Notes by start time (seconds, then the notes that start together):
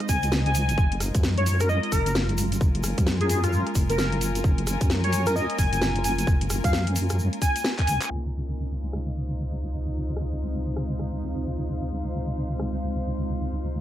Already playing: G#3 C4 D#4 F4 C5 D#5
0.00 cross-stick, closed hi-hat
0.09 C#2 G#5, kick, open hi-hat, shaker
0.23 closed hi-hat, shaker
0.32 snare, shaker
0.46 G#5, closed hi-hat
0.55 open hi-hat, shaker
0.69 G#1, closed hi-hat, shaker
0.78 F#1 A#3 C#4 F4, kick, shaker
0.92 A#4, closed hi-hat
1.00 cross-stick, open hi-hat, shaker
1.15 F#2, kick, closed hi-hat, shaker
1.23 snare, shaker
1.38 C#5, closed hi-hat
1.46 C#5, open hi-hat, shaker
1.60 A#4, cross-stick, closed hi-hat, shaker
1.69 D#5, shaker
1.83 D#5, closed hi-hat
1.92 F#1 A#4, kick, open hi-hat, shaker
2.06 closed hi-hat, shaker
2.15 snare, shaker
2.29 closed hi-hat
2.38 open hi-hat, shaker
2.52 G#5, closed hi-hat, shaker
2.61 F#1, kick, shaker
2.75 closed hi-hat
2.83 cross-stick, open hi-hat, shaker
2.98 F#2, kick, closed hi-hat, shaker
3.07 snare, shaker
3.21 G#4, closed hi-hat
3.30 G#4, open hi-hat, shaker
3.44 F4, cross-stick, closed hi-hat, shaker
3.53 shaker
3.67 cross-stick, closed hi-hat
3.75 F#1, kick, open hi-hat, shaker
3.90 A#4, closed hi-hat, shaker
3.98 A#4, snare, shaker
4.12 closed hi-hat
4.21 open hi-hat, shaker
4.35 closed hi-hat, shaker
4.44 F#1, kick, shaker
4.58 closed hi-hat
4.67 cross-stick, open hi-hat, shaker
4.81 F#2, kick, closed hi-hat, shaker
4.90 snare, shaker
5.04 C#5, closed hi-hat
5.13 C#5, open hi-hat, shaker
5.26 A#4, cross-stick, closed hi-hat, shaker
5.36 D#5, shaker
5.50 D#5, closed hi-hat
5.58 F#1 G#5, kick, open hi-hat, shaker
5.73 G#5, closed hi-hat, shaker
5.81 G#5, snare, shaker
5.96 closed hi-hat
6.04 G#5, open hi-hat, shaker
6.18 G#5, closed hi-hat, shaker
6.27 F#1, kick, shaker
6.41 closed hi-hat
6.50 cross-stick, open hi-hat, shaker
6.64 F#2 F5, kick, closed hi-hat, shaker
6.73 snare, shaker
6.87 closed hi-hat
6.96 open hi-hat, shaker
7.09 cross-stick, closed hi-hat, shaker
7.19 shaker
7.33 closed hi-hat
7.41 G#5, kick, open hi-hat, shaker
7.56 closed hi-hat, shaker
7.64 snare, shaker
7.79 G#5, kick, clap, closed hi-hat
7.87 C#2, open hi-hat, shaker
8.02 clap, closed hi-hat, shaker
8.10 C#2 G#3 C4 D#4 F4, crash
8.66 C5
8.73 F5
8.93 cross-stick
10.17 cross-stick
10.77 cross-stick
10.99 cross-stick
12.60 cross-stick